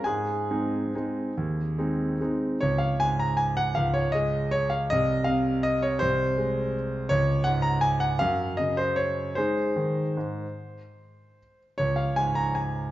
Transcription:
X:1
M:3/4
L:1/8
Q:1/4=155
K:Db
V:1 name="Grand piano"
[Aa]6- | [Aa]4 z2 | d f a b a g | f d e2 d f |
e2 f2 e d | c6 | d2 g b a g | f2 e c d2 |
c6- | c4- c z | d f a b a2 |]
V:2 name="Grand piano" clef=bass
A,,2 [A,CE]2 [A,CE]2 | E,,2 [A,CE]2 [A,CE]2 | D,,2 A,,4 | D,,2 A,4 |
C,,2 C,4 | C,,2 A,4 | D,,2 A,,4 | G,,2 D,4 |
[A,EA]2 E,2 A,,2 | z6 | D,,2 A,,4 |]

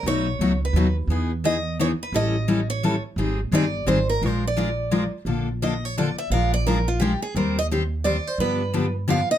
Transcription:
X:1
M:3/4
L:1/16
Q:"Swing" 1/4=172
K:Bbmix
V:1 name="Steel-string acoustic guitar"
_d6 =B4 z2 | z4 ^d4 _d2 =B2 | e6 ^c4 z2 | z4 d4 c2 B2 |
c2 d8 z2 | [K:Bb] z4 e2 _d2 =d2 =e2 | f2 d2 B2 F2 G2 _A2 | B2 e2 z4 d2 c2 |
=B6 z2 f2 e2 |]
V:2 name="Steel-string acoustic guitar"
[=B,,^F,=A,^D^F]2 z2 [B,,F,A,DF] z3 [B,,F,A,DF] z3 | [=E,=B,^D^G]2 z2 [E,B,DG] z3 [E,B,DG] z3 | [=E,G,^C=E=A]2 z2 [E,G,CEA] z3 [E,G,CEA] z3 | [E,G,CEA]2 z2 [E,G,CEA] z3 [E,G,CEA] z3 |
[F,A,DFB]2 z2 [F,A,DFB] z3 [F,A,DFB] z3 | [K:Bb] [D,F,B,DA]2 z2 [D,F,B,DA] z3 [D,F,B,DA] z3 | [F,_A,DFB]2 z2 [F,A,DFB] z3 [F,A,DFB] z3 | [E,G,CGc]2 z2 [E,G,CGc] z3 [E,G,CGc] z3 |
[D,F,=B,DG]2 z2 [D,F,B,DG] z3 [D,F,B,DG] z3 |]
V:3 name="Upright bass" clef=bass
=B,,,4 _D,,4 ^D,,4 | =E,,12 | =A,,,12 | A,,,4 G,,,4 A,,,4 |
B,,,12 | [K:Bb] B,,,12 | B,,,12 | E,,12 |
G,,12 |]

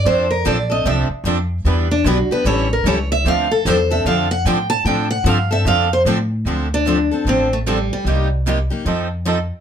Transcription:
X:1
M:4/4
L:1/8
Q:"Swing" 1/4=150
K:Dm
V:1 name="Steel-string acoustic guitar"
c B d _e =e z3 | z D ^F =B ^c _B c e | f A c e f ^f g a | g ^f =f e f c z2 |
z D2 z C A, G, G,- | G, z6 z |]
V:2 name="Steel-string acoustic guitar"
[F,CDA] z [F,CDA] [CDA] [F,CDA] z [F,CDA] z | [E,=B,DG] z [E,B,DG] [B,DG] [E,G,^CEA] z [E,G,CEA] z | [D,F,CDA] z [D,F,CDA] [CDA] [D,F,CDA] z [D,F,CDA] z | [D,F,CDA] z [D,F,CDA] [CDA] [D,F,CDA] z [D,F,CDA] z |
[D,F,CDA] z [D,F,CDA] [CDA] [D,F,CDA] z [D,F,CDA] z | [C,G,B,_EG] z [C,G,B,EG] [B,EG] [F,CEA] z [F,CEA] z |]
V:3 name="Steel-string acoustic guitar"
[F,CDA] z [F,CDA] z [F,CDA] z [F,CDA] z | [E,G,DE=B] z [E,G,DEB] z [E,G,^CEA] z [E,G,CEA] z | [D,F,CDA] z [D,F,CDA] z [D,F,CDA] z [D,F,CDA] z | [D,F,CDA] z [D,F,CDA] z [D,F,CDA] z [D,F,CDA] z |
[D,F,CDA] z [D,F,CDA] z [D,F,CDA] z [D,F,CDA] z | [C,G,B,_EG] z [C,G,B,EG] z [F,CEA] z [F,CEA] z |]
V:4 name="Upright bass" clef=bass
F,,2 B,,,2 C,, z F,,2 | E,,2 =B,,, z A,,,2 ^C,,2 | D,,2 E,,2 F,,2 A,,2 | A,,2 G,,2 F,,2 A,,2 |
D,,4 A,,,4 | C,,4 F,,4 |]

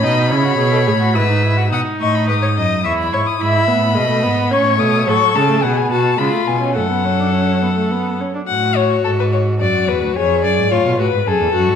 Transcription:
X:1
M:3/4
L:1/16
Q:1/4=107
K:Bdor
V:1 name="Violin"
b8 e'4 | ^d'2 c' b d'4 c' b c' d' | b8 c'2 ^d'2 | [K:F#m] c'2 a2 f g a2 b2 g2 |
f8- f2 z2 | f2 c2 A B c2 d2 B2 | c2 d2 c2 B2 A4 |]
V:2 name="Violin"
^d2 c6 B4 | f2 ^d2 B c d2 e2 c2 | e4 ^d4 c4 | [K:F#m] A4 G2 F2 ^E4 |
A8- A2 z2 | F8 F4 | G4 ^E2 F2 G2 F2 |]
V:3 name="Viola"
^D2 E F G A G F E D E F | ^D8 E4 | E2 B,2 G, A, B,2 C2 A,2 | [K:F#m] F,2 G, A, B,4 G, A, B, C |
A, B, C D C2 B, A, B,2 C D | z12 | z12 |]
V:4 name="Cello" clef=bass
B,,2 C,2 B,,2 A,,2 G,,4 | B,,2 A,,2 G,,2 F,,2 E,,2 G,,2 | G,,2 A,,2 B,,2 G,,2 A,,2 B,,2 | [K:F#m] A,,2 C,2 B,,2 B,,2 C,2 B,,2 |
F,,8- F,,2 z2 | A,,4 G,,4 F,,2 E,, D,, | ^E,,2 F,, G,, A,, B,, A,, G,, F,, =E,, F,, G,, |]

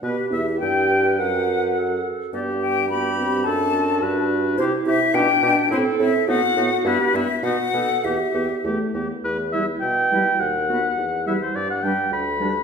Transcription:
X:1
M:2/4
L:1/16
Q:1/4=105
K:Em
V:1 name="Flute"
B2 e2 g4 | f6 z2 | d2 g2 b4 | a6 z2 |
c2 e2 g4 | c2 e2 f4 | B2 e2 f4 | e4 z4 |
z2 B z3 B z | z2 B z3 B z | z2 B z3 B z |]
V:2 name="Oboe"
B2 e2 g4 | f6 z2 | G4 G4 | A4 B4 |
G2 G2 G2 G2 | E2 E2 ^D2 D2 | E2 E2 ^D2 D2 | G2 G2 G2 G2 |
B2 e2 g4 | f6 e c | d f g2 b4 |]
V:3 name="Clarinet"
G4 E2 B2- | B4 A4 | G4 F2 G2 | A2 F6 |
E4 D4 | A4 F2 F2 | G2 z2 F2 A2 | G6 z2 |
z2 E z3 E z | z2 F z3 E z | z2 D z3 D z |]
V:4 name="French horn"
B,2 E2 G4 | F6 z2 | B,4 B,2 C2 | D4 D4 |
E2 E2 D2 D2 | C2 C2 B,2 B,2 | B,2 B,2 B,2 B,2 | B,2 B,2 A,2 B,2 |
z2 G, z3 G, z | z2 B, z3 G, z | z2 G, z3 G, z |]
V:5 name="Bassoon" clef=bass
B,,2 E,,2 G,,4 | F,,6 z2 | G,,8 | F,,4 G,,4 |
C,2 C,2 B,,2 B,,2 | A,,2 A,,2 A,,2 A,,2 | G,,2 G,,2 B,,2 B,,2 | E,,2 E,,2 E,,2 E,,2 |
E,,4 B,,4 | ^D,,4 E,,4 | G,,4 D,,4 |]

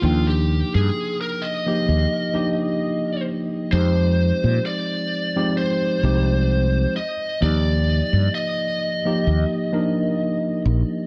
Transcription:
X:1
M:4/4
L:1/16
Q:"Swing 16ths" 1/4=65
K:Eb
V:1 name="Lead electric guitar"
F G2 A2 B e8 z2 | c4 d4 c6 e2 | d4 e8- e2 z2 |]
V:2 name="Tine electric piano"
[F,B,DEg]6- [F,B,DEg] [F,B,EG]3 [F,B,DEG] z4 z | [F,A,CEG]6- [F,A,CEG] [F,A,CEG]3 [F,A,CEG] z4 z | [F,B,EG]6- [F,B,EG] [F,B,EG]3 [F,B,DEB] z4 z |]
V:3 name="Fretless electric bass" clef=bass
E,,2 z G,, z4 E,, z6 z | F,,2 z B,, z6 C,,3 z3 | E,,2 z G,, z4 E,, z4 z B,,, z |]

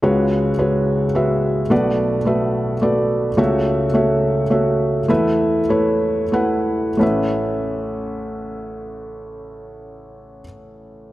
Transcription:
X:1
M:3/4
L:1/8
Q:1/4=101
K:A
V:1 name="Felt piano"
[G,FBc]2 [G,FBc]2 [G,FBe]2 | [A,FBd]2 [A,FBe]2 [A,FBd]2 | [A,Fce]2 [A,Fce]2 [A,Fce]2 | [A,EBe]2 [A,EBc]2 [A,EBf]2 |
[A,CBe]6- | [A,CBe]6 |]
V:2 name="Felt piano" clef=bass
[C,,C,]6 | [B,,,B,,]6 | [C,,C,]6 | [E,,E,]6 |
A,,,6- | A,,,6 |]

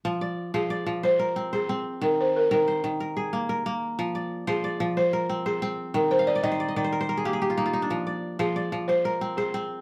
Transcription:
X:1
M:12/8
L:1/16
Q:3/8=122
K:Fdor
V:1 name="Balafon"
z6 A6 c6 A4 z2 | B2 c2 B2 B12 z6 | z6 A6 c6 A4 z2 | B2 c2 d2 e12 z6 |
z6 A6 c6 A4 z2 |]
V:2 name="Kora"
z2 d4 c2 d4 c2 B4 c6 | z6 B2 c4 B2 A4 B6 | z2 d4 c2 d4 c2 B4 c6 | z2 g f e d e c d e d c B c B A G A G F E F E D- |
D z d4 c2 d4 c2 B4 c6 |]
V:3 name="Kora" clef=bass
F,4 z2 F,4 F,4 z2 C4 C4 | E,4 z2 E,4 E,4 z2 B,4 B,4 | F,4 z2 F,4 F,4 z2 C4 C4 | E,4 z2 E,4 E,4 z2 B,4 B,4 |
F,4 z2 F,4 F,4 z2 C4 C4 |]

